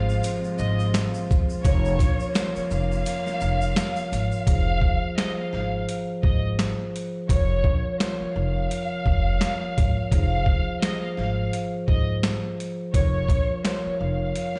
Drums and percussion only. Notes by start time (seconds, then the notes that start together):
0.09 shaker
0.24 closed hi-hat, shaker
0.44 shaker
0.58 shaker
0.79 shaker
0.94 snare, closed hi-hat, shaker
1.14 shaker
1.31 kick, shaker
1.50 shaker
1.65 kick, closed hi-hat, shaker
1.85 shaker
1.99 kick, closed hi-hat, shaker
2.20 shaker
2.35 snare, closed hi-hat, shaker
2.56 shaker
2.70 shaker
2.92 shaker
3.06 closed hi-hat, shaker
3.26 snare, shaker
3.40 shaker
3.61 shaker
3.76 snare, closed hi-hat, shaker
3.96 shaker
4.12 closed hi-hat, shaker
4.32 shaker
4.47 kick, closed hi-hat
4.81 kick
5.18 snare, closed hi-hat
5.53 snare
5.89 closed hi-hat
6.23 kick
6.59 snare, closed hi-hat
6.96 closed hi-hat
7.29 kick, closed hi-hat
7.64 kick
8.00 snare, closed hi-hat
8.71 closed hi-hat
9.06 kick
9.41 snare, closed hi-hat
9.78 kick, closed hi-hat
10.12 kick, closed hi-hat
10.46 kick
10.83 snare, closed hi-hat
11.17 snare
11.53 closed hi-hat
11.88 kick
12.23 snare, closed hi-hat
12.60 closed hi-hat
12.94 kick, closed hi-hat
13.29 kick, closed hi-hat
13.65 snare, closed hi-hat
14.35 closed hi-hat
14.56 snare